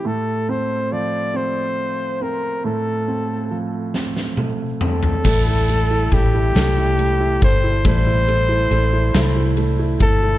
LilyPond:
<<
  \new Staff \with { instrumentName = "Flugelhorn" } { \time 6/8 \key a \phrygian \tempo 4. = 46 a'8 c''8 d''8 c''4 bes'8 | a'4 r4. a'8~ | a'4 g'4. c''8 | c''2 r8 a'8 | }
  \new Staff \with { instrumentName = "Steel-string acoustic guitar" } { \time 6/8 \key a \phrygian r2. | r2. | <a, e g c' e' a'>4 <g c' e' a'>8 <a, e g c' e' a'>4 <g c' e' a'>8 | <a, e g c' e' a'>4 <g c' e' a'>8 <a, e g c' e' a'>4 <g c' e' a'>8 | }
  \new Staff \with { instrumentName = "Upright piano" } { \time 6/8 \key a \phrygian a,8 c'8 f8 c'4 c'8 | a,8 c'8 f8 c'8 a8 c'8 | a16 e'16 a16 e'16 a16 e'16 a16 e'16 a16 e'16 a16 e'16 | a16 e'16 a16 e'16 a16 e'16 a16 e'16 a16 e'16 a16 e'16 | }
  \new Staff \with { instrumentName = "Fingered electric bass" } { \clef bass \time 6/8 \key a \phrygian r2. | r2. | a,,4 a,,8 c,4 g,,8 | a,,4 a,,8 c,4 g,,8 | }
  \new DrumStaff \with { instrumentName = "Drums" } \drummode { \time 6/8 r4. r4. | r4. sn16 sn16 tommh8 toml16 tomfh16 | <cymc bd>8 cymr8 <bd cymr>8 <cymr sn>8 cymr8 <bd cymr>8 | <bd cymr>8 cymr8 cymr8 <cymr sn>8 cymr8 <bd cymr>8 | }
>>